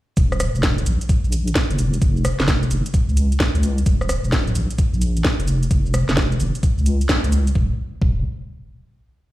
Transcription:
0.17 D#1, kick, closed hi-hat, shaker
0.32 cross-stick, shaker
0.40 cross-stick, closed hi-hat, shaker
0.55 D#1, shaker
0.63 kick, snare, shaker
0.78 closed hi-hat, shaker
0.86 A#1, closed hi-hat, shaker
1.01 closed hi-hat, shaker
1.09 kick, closed hi-hat, shaker
1.24 A#1, shaker
1.32 closed hi-hat, shaker
1.48 closed hi-hat, shaker
1.55 kick, snare, shaker
1.71 F1, closed hi-hat, shaker
1.79 closed hi-hat, shaker
1.94 closed hi-hat, shaker
2.02 F1, kick, closed hi-hat, shaker
2.17 shaker
2.25 cross-stick, closed hi-hat, shaker
2.40 F1, snare, shaker
2.48 kick, snare, shaker
2.63 closed hi-hat, shaker
2.71 F1, closed hi-hat, shaker
2.86 closed hi-hat, shaker
2.94 kick, closed hi-hat, shaker
3.09 C#2, shaker
3.17 closed hi-hat, shaker
3.32 closed hi-hat, shaker
3.40 kick, snare, shaker
3.55 C#2, closed hi-hat, shaker
3.63 closed hi-hat, shaker
3.78 closed hi-hat, shaker
3.86 D#1, kick, closed hi-hat, shaker
4.01 cross-stick, shaker
4.09 cross-stick, closed hi-hat, shaker
4.24 D#1, shaker
4.32 kick, snare, shaker
4.47 closed hi-hat, shaker
4.55 A#1, closed hi-hat, shaker
4.71 closed hi-hat, shaker
4.78 kick, closed hi-hat, shaker
4.94 A#1, shaker
5.02 closed hi-hat, shaker
5.17 closed hi-hat, shaker
5.25 kick, snare, shaker
5.40 F1, closed hi-hat, shaker
5.48 closed hi-hat, shaker
5.63 closed hi-hat, shaker
5.71 F1, kick, closed hi-hat, shaker
5.86 shaker
5.94 cross-stick, closed hi-hat, shaker
6.09 F1, snare, shaker
6.17 kick, snare, shaker
6.32 closed hi-hat, shaker
6.40 F1, closed hi-hat, shaker
6.55 closed hi-hat, shaker
6.63 kick, closed hi-hat, shaker
6.78 C#2, shaker
6.86 closed hi-hat, shaker
7.01 closed hi-hat, shaker
7.09 kick, snare, shaker
7.24 C#2, closed hi-hat, shaker
7.32 closed hi-hat, shaker
7.47 closed hi-hat, shaker
7.55 D#1, kick
8.02 D#1, kick

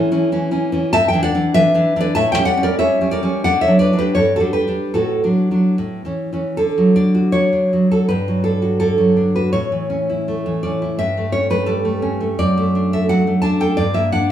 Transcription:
Already playing: E3 C#4 E4 A4
0.12 E3 C#4
0.32 E3 C#4
0.51 E3 C#4
0.72 E3 C#4
0.93 G2 E5 A5
1.08 E5 G5
1.13 E3 D4
1.23 D5 F#5
1.34 E3 D4
1.54 E3 D4 B4 E5
1.74 E3 D4
1.96 E3 D4
2.00 B4 D5
2.15 A2 E5 A5
2.32 E5 G5
2.37 G3 C#4
2.45 D5 F#5
2.57 G3 C#4
2.63 A#4 D5
2.78 G3 C#4 C#5 E5
3.01 G3 C#4
3.11 A#4 D5
3.23 G3 C#4
3.44 D3 D5 F#5
3.61 C#5 E5
3.67 F#3 D4
3.79 B4 D5
3.93 F#3 D4
3.99 G4 B4
4.15 G2 A4 C#5
4.36 F#4 A4
4.40 G3 D4
4.53 G4 B4
4.67 G3 D4
4.94 A2 F#4 A4
5.24 F#3 D4
5.51 F#3 D4
5.78 A2
6.05 E3 C#4
6.33 E3 C#4
6.57 D3 A4
6.78 F#3
6.96 D4 D5
7.15 F#4
7.32 F#3 C#5
7.53 D4
7.73 F#3
7.91 F#4 A4
8.09 G2 B4
8.28 F#3
8.44 D4 A4
8.62 F#4
8.80 D3 A4
8.98 F#3
9.17 D4
9.36 F#4 B4
9.53 A2 C#5
9.72 E3
9.90 C#4
10.10 E4
10.28 A3
10.46 E3
10.63 C#4 D5
10.82 E4
10.99 G2 E5
11.17 A3
11.32 C#4 C#5
11.50 A3 B4
11.66 G3 A4
11.85 A3
12.02 C#4
12.20 A3
12.39 F#2 D5
12.57 A3
12.75 D4
12.93 A4 E5
13.09 F#3 F#5
13.27 A3
13.42 D4 A5
13.60 A4 G5
13.77 G2 D5
13.94 A#3 E5
14.12 D4 F#5

